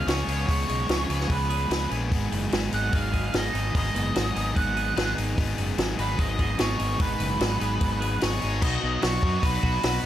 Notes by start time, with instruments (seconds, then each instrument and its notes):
Already playing: clean electric guitar F3 B3 G#4, overdriven electric guitar G#4
0.07 fingered electric bass C#2, overdriven electric guitar F3 B3 C#4, clean electric guitar G#3, lead electric guitar C#5, snare, open hi-hat
0.11 overdriven electric guitar G#4
0.27 fingered electric bass C#2, clean electric guitar B3, overdriven electric guitar C#4 G#4, open hi-hat
0.31 overdriven electric guitar B3
0.48 fingered electric bass C#2, clean electric guitar C#3, overdriven electric guitar F3 B3 C#4 G#4, lead electric guitar C#5, kick, open hi-hat
0.69 fingered electric bass B1, clean electric guitar G#3, open hi-hat
0.89 fingered electric bass C#2, clean electric guitar F3, overdriven electric guitar F3 B3 C#4, snare, open hi-hat
0.93 overdriven electric guitar G#4
1.09 fingered electric bass C#2, clean electric guitar B3, overdriven electric guitar B3 C#4 G#4, open hi-hat
1.21 snare
1.30 fingered electric bass C#2, clean electric guitar G#3, lead electric guitar B4, kick, open hi-hat
1.50 clean electric guitar G#4, open hi-hat
1.70 fingered electric bass C#2, overdriven electric guitar F3 B3 C#4 G#4, clean electric guitar G#3, snare, open hi-hat
1.89 fingered electric bass A#1, clean electric guitar B3, overdriven electric guitar G#4, open hi-hat
1.93 overdriven electric guitar B3 C#4
2.10 fingered electric bass G#1, clean electric guitar G#2, overdriven electric guitar D#3 B3, kick, open hi-hat
2.14 overdriven electric guitar D#4 G#4
2.31 fingered electric bass F#1, clean electric guitar B3, open hi-hat
2.51 fingered electric bass G#1, overdriven electric guitar D#3 B3 D#4, clean electric guitar F#3, snare, open hi-hat
2.55 overdriven electric guitar G#4
2.72 fingered electric bass G#1, clean electric guitar D#4, overdriven electric guitar D#4 G#4, lead electric guitar F#5, open hi-hat
2.76 overdriven electric guitar B3
2.92 fingered electric bass G#1, clean electric guitar B3, lead electric guitar F5, kick, open hi-hat
3.13 clean electric guitar G#4, kick, open hi-hat
3.32 fingered electric bass G#1, overdriven electric guitar D#3 B3 D#4, clean electric guitar B3, snare, open hi-hat
3.37 overdriven electric guitar G#4, lead electric guitar D#5
3.53 fingered electric bass G#1, clean electric guitar D#4, overdriven electric guitar D#4 G#4, open hi-hat
3.57 overdriven electric guitar B3
3.73 fingered electric bass G#1, clean electric guitar G#2, overdriven electric guitar D#3 B3 D#4, kick, open hi-hat
3.77 overdriven electric guitar G#4, lead electric guitar D#5
3.94 fingered electric bass F#1, clean electric guitar B3, open hi-hat
4.15 fingered electric bass G#1, overdriven electric guitar D#3 B3 D#4 G#4, clean electric guitar F#3, snare, open hi-hat
4.35 fingered electric bass G#1, clean electric guitar D#4, overdriven electric guitar D#4 G#4, open hi-hat
4.39 overdriven electric guitar B3
4.56 fingered electric bass G#1, clean electric guitar B3, lead electric guitar F#5, kick, open hi-hat
4.77 clean electric guitar G#4, open hi-hat
4.96 fingered electric bass G#1, overdriven electric guitar D#3 B3 D#4 G#4, clean electric guitar B3, snare, open hi-hat
5.16 fingered electric bass G#1, overdriven electric guitar B3 D#4 G#4, clean electric guitar D#4, open hi-hat
5.37 fingered electric bass G#1, clean electric guitar G#2, overdriven electric guitar D#3 B3 D#4 G#4, kick, open hi-hat
5.58 fingered electric bass F#1, clean electric guitar B3, open hi-hat
5.77 fingered electric bass G#1, overdriven electric guitar D#3 B3 D#4 G#4, clean electric guitar F#3, snare, open hi-hat
5.98 fingered electric bass G#1, overdriven electric guitar B3 D#4 G#4, clean electric guitar D#4, lead electric guitar B4, open hi-hat
6.18 fingered electric bass G#1, clean electric guitar B3, lead electric guitar D#5, kick, open hi-hat
6.39 clean electric guitar G#4, kick, open hi-hat
6.59 fingered electric bass G#1, overdriven electric guitar D#3 B3 D#4 G#4, clean electric guitar B3, lead electric guitar C#5, snare, open hi-hat
6.79 fingered electric bass G#1, overdriven electric guitar B3 D#4 G#4, clean electric guitar D#4, open hi-hat
6.98 fingered electric bass G#1, clean electric guitar G#2, overdriven electric guitar D#3 B3 D#4 G#4, lead electric guitar B4, kick, open hi-hat
7.19 fingered electric bass F#1, clean electric guitar B3, open hi-hat
7.39 fingered electric bass G#1, overdriven electric guitar D#3 B3 D#4 G#4, clean electric guitar F#3, snare, open hi-hat
7.60 fingered electric bass G#1, overdriven electric guitar B3 D#4 G#4, clean electric guitar D#4, open hi-hat
7.80 fingered electric bass G#1, clean electric guitar B3, kick, open hi-hat
8.01 clean electric guitar G#4, open hi-hat
8.21 fingered electric bass G#1, overdriven electric guitar D#3 B3 D#4 G#4, clean electric guitar B3, lead electric guitar C#5, snare, open hi-hat
8.41 fingered electric bass G#1, overdriven electric guitar B3 D#4 G#4, clean electric guitar D#4, open hi-hat
8.61 fingered electric bass B1, clean electric guitar B2, overdriven electric guitar B3 D#4 F#4, lead electric guitar D#5, kick, crash
8.82 fingered electric bass B1, clean electric guitar F#3
9.02 fingered electric bass B1, clean electric guitar F#3, overdriven electric guitar B3 D#4, lead electric guitar C#5, snare, open hi-hat
9.06 overdriven electric guitar F#4
9.23 fingered electric bass F#2, overdriven electric guitar D#4 F#4, kick
9.42 fingered electric bass B1, overdriven electric guitar B3 D#4 F#4, clean electric guitar D#4, lead electric guitar B4, kick, open hi-hat
9.63 fingered electric bass B1, overdriven electric guitar D#4 F#4, clean electric guitar F#4, kick
9.83 fingered electric bass B1, overdriven electric guitar B3 D#4 F#4, clean electric guitar D#4, lead electric guitar B4, snare, open hi-hat